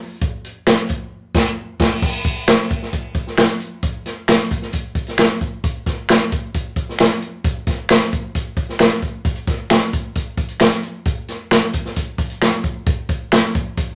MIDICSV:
0, 0, Header, 1, 2, 480
1, 0, Start_track
1, 0, Tempo, 451807
1, 233, Time_signature, 4, 2, 24, 8
1, 14822, End_track
2, 0, Start_track
2, 0, Title_t, "Drums"
2, 225, Note_on_c, 9, 42, 97
2, 229, Note_on_c, 9, 36, 108
2, 332, Note_off_c, 9, 42, 0
2, 335, Note_off_c, 9, 36, 0
2, 473, Note_on_c, 9, 42, 70
2, 580, Note_off_c, 9, 42, 0
2, 707, Note_on_c, 9, 42, 94
2, 709, Note_on_c, 9, 26, 82
2, 710, Note_on_c, 9, 38, 120
2, 813, Note_off_c, 9, 42, 0
2, 815, Note_off_c, 9, 26, 0
2, 817, Note_off_c, 9, 38, 0
2, 943, Note_on_c, 9, 42, 80
2, 954, Note_on_c, 9, 36, 90
2, 1049, Note_off_c, 9, 42, 0
2, 1061, Note_off_c, 9, 36, 0
2, 1429, Note_on_c, 9, 49, 87
2, 1430, Note_on_c, 9, 36, 109
2, 1435, Note_on_c, 9, 38, 111
2, 1535, Note_off_c, 9, 49, 0
2, 1536, Note_off_c, 9, 36, 0
2, 1542, Note_off_c, 9, 38, 0
2, 1909, Note_on_c, 9, 36, 104
2, 1909, Note_on_c, 9, 49, 75
2, 1915, Note_on_c, 9, 38, 106
2, 2015, Note_off_c, 9, 49, 0
2, 2016, Note_off_c, 9, 36, 0
2, 2021, Note_off_c, 9, 38, 0
2, 2148, Note_on_c, 9, 49, 93
2, 2149, Note_on_c, 9, 36, 110
2, 2255, Note_off_c, 9, 36, 0
2, 2255, Note_off_c, 9, 49, 0
2, 2386, Note_on_c, 9, 42, 70
2, 2388, Note_on_c, 9, 36, 102
2, 2493, Note_off_c, 9, 42, 0
2, 2494, Note_off_c, 9, 36, 0
2, 2629, Note_on_c, 9, 42, 97
2, 2633, Note_on_c, 9, 26, 84
2, 2633, Note_on_c, 9, 38, 121
2, 2735, Note_off_c, 9, 42, 0
2, 2739, Note_off_c, 9, 26, 0
2, 2739, Note_off_c, 9, 38, 0
2, 2870, Note_on_c, 9, 42, 79
2, 2876, Note_on_c, 9, 36, 98
2, 2977, Note_off_c, 9, 42, 0
2, 2982, Note_off_c, 9, 36, 0
2, 3001, Note_on_c, 9, 38, 34
2, 3107, Note_off_c, 9, 38, 0
2, 3109, Note_on_c, 9, 42, 88
2, 3113, Note_on_c, 9, 36, 90
2, 3216, Note_off_c, 9, 42, 0
2, 3220, Note_off_c, 9, 36, 0
2, 3344, Note_on_c, 9, 36, 92
2, 3347, Note_on_c, 9, 42, 64
2, 3450, Note_off_c, 9, 36, 0
2, 3453, Note_off_c, 9, 42, 0
2, 3476, Note_on_c, 9, 38, 34
2, 3583, Note_off_c, 9, 38, 0
2, 3586, Note_on_c, 9, 26, 82
2, 3586, Note_on_c, 9, 42, 89
2, 3591, Note_on_c, 9, 38, 101
2, 3692, Note_off_c, 9, 26, 0
2, 3692, Note_off_c, 9, 42, 0
2, 3697, Note_off_c, 9, 38, 0
2, 3825, Note_on_c, 9, 42, 59
2, 3932, Note_off_c, 9, 42, 0
2, 4065, Note_on_c, 9, 42, 96
2, 4068, Note_on_c, 9, 36, 104
2, 4171, Note_off_c, 9, 42, 0
2, 4174, Note_off_c, 9, 36, 0
2, 4309, Note_on_c, 9, 42, 71
2, 4311, Note_on_c, 9, 38, 34
2, 4415, Note_off_c, 9, 42, 0
2, 4417, Note_off_c, 9, 38, 0
2, 4548, Note_on_c, 9, 26, 87
2, 4550, Note_on_c, 9, 42, 101
2, 4554, Note_on_c, 9, 38, 116
2, 4654, Note_off_c, 9, 26, 0
2, 4657, Note_off_c, 9, 42, 0
2, 4660, Note_off_c, 9, 38, 0
2, 4786, Note_on_c, 9, 42, 77
2, 4794, Note_on_c, 9, 36, 89
2, 4893, Note_off_c, 9, 42, 0
2, 4900, Note_off_c, 9, 36, 0
2, 4908, Note_on_c, 9, 38, 34
2, 5014, Note_off_c, 9, 38, 0
2, 5023, Note_on_c, 9, 42, 95
2, 5031, Note_on_c, 9, 36, 87
2, 5130, Note_off_c, 9, 42, 0
2, 5137, Note_off_c, 9, 36, 0
2, 5261, Note_on_c, 9, 36, 91
2, 5261, Note_on_c, 9, 42, 69
2, 5367, Note_off_c, 9, 36, 0
2, 5367, Note_off_c, 9, 42, 0
2, 5383, Note_on_c, 9, 42, 52
2, 5399, Note_on_c, 9, 38, 34
2, 5489, Note_off_c, 9, 42, 0
2, 5503, Note_on_c, 9, 26, 85
2, 5505, Note_off_c, 9, 38, 0
2, 5506, Note_on_c, 9, 42, 89
2, 5511, Note_on_c, 9, 38, 102
2, 5609, Note_off_c, 9, 26, 0
2, 5613, Note_off_c, 9, 42, 0
2, 5618, Note_off_c, 9, 38, 0
2, 5747, Note_on_c, 9, 42, 59
2, 5750, Note_on_c, 9, 36, 88
2, 5853, Note_off_c, 9, 42, 0
2, 5856, Note_off_c, 9, 36, 0
2, 5988, Note_on_c, 9, 42, 88
2, 5990, Note_on_c, 9, 36, 107
2, 6095, Note_off_c, 9, 42, 0
2, 6097, Note_off_c, 9, 36, 0
2, 6230, Note_on_c, 9, 36, 97
2, 6233, Note_on_c, 9, 42, 77
2, 6234, Note_on_c, 9, 38, 35
2, 6336, Note_off_c, 9, 36, 0
2, 6339, Note_off_c, 9, 42, 0
2, 6341, Note_off_c, 9, 38, 0
2, 6468, Note_on_c, 9, 26, 89
2, 6477, Note_on_c, 9, 42, 97
2, 6481, Note_on_c, 9, 38, 119
2, 6574, Note_off_c, 9, 26, 0
2, 6584, Note_off_c, 9, 42, 0
2, 6587, Note_off_c, 9, 38, 0
2, 6714, Note_on_c, 9, 42, 81
2, 6718, Note_on_c, 9, 36, 97
2, 6820, Note_off_c, 9, 42, 0
2, 6824, Note_off_c, 9, 36, 0
2, 6951, Note_on_c, 9, 42, 86
2, 6955, Note_on_c, 9, 36, 89
2, 7057, Note_off_c, 9, 42, 0
2, 7061, Note_off_c, 9, 36, 0
2, 7184, Note_on_c, 9, 36, 91
2, 7188, Note_on_c, 9, 42, 66
2, 7291, Note_off_c, 9, 36, 0
2, 7294, Note_off_c, 9, 42, 0
2, 7323, Note_on_c, 9, 38, 35
2, 7422, Note_on_c, 9, 26, 82
2, 7429, Note_off_c, 9, 38, 0
2, 7435, Note_on_c, 9, 42, 93
2, 7440, Note_on_c, 9, 38, 102
2, 7528, Note_off_c, 9, 26, 0
2, 7541, Note_off_c, 9, 42, 0
2, 7546, Note_off_c, 9, 38, 0
2, 7673, Note_on_c, 9, 42, 62
2, 7779, Note_off_c, 9, 42, 0
2, 7908, Note_on_c, 9, 42, 98
2, 7909, Note_on_c, 9, 36, 110
2, 8014, Note_off_c, 9, 42, 0
2, 8015, Note_off_c, 9, 36, 0
2, 8149, Note_on_c, 9, 36, 100
2, 8155, Note_on_c, 9, 42, 79
2, 8157, Note_on_c, 9, 38, 34
2, 8255, Note_off_c, 9, 36, 0
2, 8261, Note_off_c, 9, 42, 0
2, 8263, Note_off_c, 9, 38, 0
2, 8383, Note_on_c, 9, 26, 88
2, 8394, Note_on_c, 9, 42, 93
2, 8398, Note_on_c, 9, 38, 125
2, 8489, Note_off_c, 9, 26, 0
2, 8501, Note_off_c, 9, 42, 0
2, 8504, Note_off_c, 9, 38, 0
2, 8633, Note_on_c, 9, 42, 77
2, 8636, Note_on_c, 9, 36, 90
2, 8740, Note_off_c, 9, 42, 0
2, 8743, Note_off_c, 9, 36, 0
2, 8869, Note_on_c, 9, 42, 96
2, 8873, Note_on_c, 9, 36, 91
2, 8976, Note_off_c, 9, 42, 0
2, 8979, Note_off_c, 9, 36, 0
2, 9102, Note_on_c, 9, 36, 98
2, 9105, Note_on_c, 9, 42, 63
2, 9208, Note_off_c, 9, 36, 0
2, 9212, Note_off_c, 9, 42, 0
2, 9235, Note_on_c, 9, 38, 36
2, 9341, Note_off_c, 9, 38, 0
2, 9341, Note_on_c, 9, 26, 78
2, 9345, Note_on_c, 9, 42, 88
2, 9350, Note_on_c, 9, 38, 102
2, 9447, Note_off_c, 9, 26, 0
2, 9451, Note_off_c, 9, 42, 0
2, 9456, Note_off_c, 9, 38, 0
2, 9586, Note_on_c, 9, 42, 61
2, 9587, Note_on_c, 9, 36, 85
2, 9692, Note_off_c, 9, 42, 0
2, 9693, Note_off_c, 9, 36, 0
2, 9825, Note_on_c, 9, 42, 88
2, 9826, Note_on_c, 9, 36, 106
2, 9932, Note_off_c, 9, 36, 0
2, 9932, Note_off_c, 9, 42, 0
2, 9939, Note_on_c, 9, 42, 55
2, 10045, Note_off_c, 9, 42, 0
2, 10066, Note_on_c, 9, 36, 103
2, 10069, Note_on_c, 9, 42, 74
2, 10071, Note_on_c, 9, 38, 35
2, 10172, Note_off_c, 9, 36, 0
2, 10175, Note_off_c, 9, 42, 0
2, 10177, Note_off_c, 9, 38, 0
2, 10307, Note_on_c, 9, 26, 95
2, 10308, Note_on_c, 9, 42, 102
2, 10312, Note_on_c, 9, 38, 117
2, 10413, Note_off_c, 9, 26, 0
2, 10414, Note_off_c, 9, 42, 0
2, 10418, Note_off_c, 9, 38, 0
2, 10550, Note_on_c, 9, 42, 78
2, 10554, Note_on_c, 9, 36, 93
2, 10656, Note_off_c, 9, 42, 0
2, 10660, Note_off_c, 9, 36, 0
2, 10787, Note_on_c, 9, 42, 92
2, 10792, Note_on_c, 9, 36, 90
2, 10894, Note_off_c, 9, 42, 0
2, 10898, Note_off_c, 9, 36, 0
2, 11022, Note_on_c, 9, 36, 92
2, 11022, Note_on_c, 9, 42, 68
2, 11128, Note_off_c, 9, 36, 0
2, 11128, Note_off_c, 9, 42, 0
2, 11138, Note_on_c, 9, 42, 49
2, 11244, Note_off_c, 9, 42, 0
2, 11259, Note_on_c, 9, 26, 77
2, 11263, Note_on_c, 9, 42, 91
2, 11268, Note_on_c, 9, 38, 104
2, 11365, Note_off_c, 9, 26, 0
2, 11369, Note_off_c, 9, 42, 0
2, 11374, Note_off_c, 9, 38, 0
2, 11507, Note_on_c, 9, 42, 64
2, 11613, Note_off_c, 9, 42, 0
2, 11744, Note_on_c, 9, 42, 93
2, 11748, Note_on_c, 9, 36, 106
2, 11850, Note_off_c, 9, 42, 0
2, 11854, Note_off_c, 9, 36, 0
2, 11988, Note_on_c, 9, 42, 76
2, 11990, Note_on_c, 9, 38, 33
2, 12094, Note_off_c, 9, 42, 0
2, 12096, Note_off_c, 9, 38, 0
2, 12229, Note_on_c, 9, 42, 99
2, 12231, Note_on_c, 9, 26, 91
2, 12232, Note_on_c, 9, 38, 116
2, 12335, Note_off_c, 9, 42, 0
2, 12337, Note_off_c, 9, 26, 0
2, 12338, Note_off_c, 9, 38, 0
2, 12465, Note_on_c, 9, 42, 83
2, 12474, Note_on_c, 9, 36, 89
2, 12571, Note_off_c, 9, 42, 0
2, 12580, Note_off_c, 9, 36, 0
2, 12594, Note_on_c, 9, 38, 34
2, 12701, Note_off_c, 9, 38, 0
2, 12708, Note_on_c, 9, 42, 97
2, 12714, Note_on_c, 9, 36, 89
2, 12814, Note_off_c, 9, 42, 0
2, 12820, Note_off_c, 9, 36, 0
2, 12944, Note_on_c, 9, 36, 93
2, 12950, Note_on_c, 9, 42, 70
2, 13050, Note_off_c, 9, 36, 0
2, 13056, Note_off_c, 9, 42, 0
2, 13065, Note_on_c, 9, 42, 54
2, 13171, Note_off_c, 9, 42, 0
2, 13191, Note_on_c, 9, 26, 84
2, 13191, Note_on_c, 9, 42, 93
2, 13195, Note_on_c, 9, 38, 99
2, 13297, Note_off_c, 9, 26, 0
2, 13297, Note_off_c, 9, 42, 0
2, 13302, Note_off_c, 9, 38, 0
2, 13427, Note_on_c, 9, 42, 58
2, 13428, Note_on_c, 9, 36, 90
2, 13533, Note_off_c, 9, 42, 0
2, 13535, Note_off_c, 9, 36, 0
2, 13667, Note_on_c, 9, 42, 93
2, 13669, Note_on_c, 9, 36, 114
2, 13773, Note_off_c, 9, 42, 0
2, 13775, Note_off_c, 9, 36, 0
2, 13908, Note_on_c, 9, 36, 99
2, 13908, Note_on_c, 9, 42, 82
2, 14014, Note_off_c, 9, 36, 0
2, 14014, Note_off_c, 9, 42, 0
2, 14150, Note_on_c, 9, 26, 91
2, 14153, Note_on_c, 9, 42, 104
2, 14157, Note_on_c, 9, 38, 119
2, 14256, Note_off_c, 9, 26, 0
2, 14260, Note_off_c, 9, 42, 0
2, 14263, Note_off_c, 9, 38, 0
2, 14392, Note_on_c, 9, 42, 84
2, 14397, Note_on_c, 9, 36, 100
2, 14499, Note_off_c, 9, 42, 0
2, 14503, Note_off_c, 9, 36, 0
2, 14633, Note_on_c, 9, 42, 92
2, 14634, Note_on_c, 9, 36, 96
2, 14739, Note_off_c, 9, 42, 0
2, 14741, Note_off_c, 9, 36, 0
2, 14822, End_track
0, 0, End_of_file